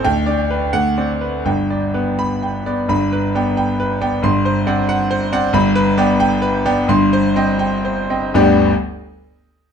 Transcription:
<<
  \new Staff \with { instrumentName = "Grand piano" } { \time 6/8 \key g \major \tempo 4. = 86 << { g''4 r8 fis''4 r8 | r4. b''4 r8 | b''4 r2 | c'''4 r2 |
b''4 r2 | c'''4 r2 | <g,, d, g b d' g'>8 r2 r8 | } \\ { r8 d''8 b'8 r8 d''8 b'8 | g''8 d''8 b'4 g''8 d''8 | r8 b'8 <d'' g''>8 g''8 b'8 <d'' g''>8 | r8 c''8 <d'' fis''>8 fis''8 c''8 <d'' fis''>8 |
r8 b'8 <d'' g''>8 g''8 b'8 <d'' g''>8 | r8 c''8 <ees'' g''>8 g''8 c''8 <ees'' g''>8 | r2. | } >> }
  \new Staff \with { instrumentName = "Grand piano" } { \clef bass \time 6/8 \key g \major d,8 d'4 d,8 c'4 | <g,, g,>4 b4 r8 b8 | <g,, g,>4 b4 r8 b8 | <g,, g,>4 c'4 r8 c'8 |
<g,, g,>4 b4 r8 b8 | <g,, g,>4 c'4 r8 c'8 | r2. | }
>>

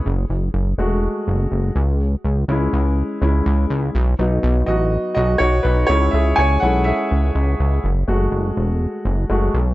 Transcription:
<<
  \new Staff \with { instrumentName = "Upright piano" } { \time 4/4 \key fis \dorian \tempo 4 = 123 << { r1 | r1 | r4. <fis' dis''>4 <fis' dis''>8 <fis' cis''>8 <dis' b'>8 | cis''8 <gis' e''>8 <cis'' gis''>8 <a' fis''>8 <gis' e''>4. r8 |
r1 | } \\ { r4. <gis a fis'>2 r8 | r4 <gis cis' e'>8 r4 <gis cis' e'>8 r4 | r8 <fis b dis'>4. r2 | <gis cis' e'>8 r4 <gis cis' e'>8 r2 |
r8 <gis a fis'>4. r4 <gis a fis'>8 r8 | } >> }
  \new Staff \with { instrumentName = "Analog synth bass" } { \clef bass \time 4/4 \key fis \dorian fis,,8 fis,,8 fis,,8 e,,8. r16 fis,,8 fis,,8 cis,8~ | cis,8 cis,8 cis,8 cis,8. r16 cis,8 cis,8 cis,8 | b,,8 b,,8 b,,8 a,,8. r16 b,,8 b,,8 b,,8 | cis,8 cis,8 cis,8 b,,8. r16 cis,8 cis,8 cis,8 |
fis,,8 fis,,8 fis,,8 e,,8. r16 fis,,8 fis,,8 b,,8 | }
>>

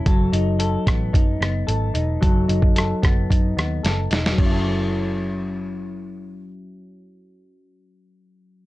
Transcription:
<<
  \new Staff \with { instrumentName = "Clean electric guitar" } { \time 4/4 \key fis \dorian \tempo 4 = 111 <fis a'>8 dis'8 a'8 b8 dis'8 b8 a'8 dis'8 | <fis a'>8 dis'8 a'8 b8 dis'8 b8 a'8 dis'8 | <fis cis' e' a'>1~ | <fis cis' e' a'>1 | }
  \new Staff \with { instrumentName = "Picked electric bass" } { \clef bass \time 4/4 \key fis \dorian fis,,8 fis,,4 a,,8 fis,8 fis,,8 gis,,8 e,,8 | fis,,8 fis,,4 fis,,8 fis,8 dis,8 fis,,8 e,,8 | fis,,1~ | fis,,1 | }
  \new DrumStaff \with { instrumentName = "Drums" } \drummode { \time 4/4 <hh bd>8 hh8 hh8 <hh bd ss>8 <hh bd>8 <hh ss>8 hh8 hh8 | <hh bd>8 hh16 bd16 <hh ss>8 <hh bd ss>8 <hh bd>8 <hh ss>8 <hh sn>8 <hh sn>16 sn16 | <cymc bd>4 r4 r4 r4 | r4 r4 r4 r4 | }
>>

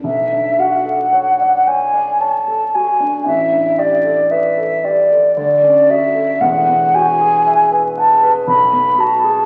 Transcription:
<<
  \new Staff \with { instrumentName = "Flute" } { \time 3/4 \key b \dorian \tempo 4 = 57 e''8 fis''4 gis''8 a''8 gis''8 | e''8 d''8 e''8 d''8 d''8 e''8 | fis''8 gis''4 a''8 b''8 a''8 | }
  \new Staff \with { instrumentName = "Grand piano" } { \time 3/4 \key b \dorian b,,16 d'16 fis'16 a'16 cis''16 d''16 cis''16 d''16 cis''16 a'16 fis'16 d'16 | a,,16 d'16 g'16 a'16 b'16 a'16 g'16 a'16 d,16 cis'16 fis'16 a'16 | <e,, e,>16 b16 fis'16 gis'16 e''16 b'16 fis''16 b'16 b,,16 b16 fis'16 gis'16 | }
>>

